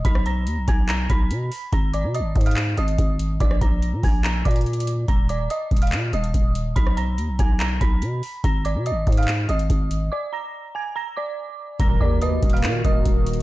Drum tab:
HH |x-----------x-----------x-----------x-----------x-----------x-----------x-----------o-----------|x-----------x-----------x-----------x--x--x--x--x-----------x-----x-----x-----------x-----------|x-----------x-----------x-----------o-----------x-----------x--x--x--x--x---x---x---x-----------|x-----------x-----------x-----------x--x--x--x--x-----------x-----x-----x-----------x-----------|
CP |------------------------------------------------x-----------------------------------------------|------------------------------------------------x-----------------------------------------------|------------------------------------------------x-----------------------------------------------|------------------------------------------------x-----------------------------------------------|
SD |------r-----------------------------------------------------------------------------------------|------------------------------------------------------------------------------------------------|------r-----------------------------------------------------------------------------------------|------------------------------------------------------------------------------------------------|
BD |o-----------------------------------o-----------------------o-----------------------------------|o-----------------------------------o-----------------------------------o-----------------------|o-----------o-----------------------o-----------------------o-----------------------------------|o-----------------------------------o-----------------------------------o-----------------------|

HH |x-----------x-----------x-----------x-----------x-----------x-----------x-----------o-----------|x-----------x-----------x-----------x--x--x--x--x-----------x-----x-----x-----------x-----------|------------------------------------------------------------------------------------------------|x-----------------------x-----------x---x---x---x-----------x-----------x-----------x---x-------|
CP |------------------------------------------------x-----------------------------------------------|------------------------------------------------x-----------------------------------------------|------------------------------------------------------------------------------------------------|------------------------------------------------x-----------------------------------------------|
SD |------r-----------------------------------------------------------------------------------------|------------------------------------------------------------------------------------------------|------------------------------------------------------------------------------------------------|------------------------------------------------------------------------------------------------|
BD |o-----------------------------------o-----------------------o-----------------------------------|o-----------------------------------o-----------------------------------o-----------------------|------------------------------------------------------------------------------------------------|o-----------o-----------------------o-----------------------o-----------o-----------------------|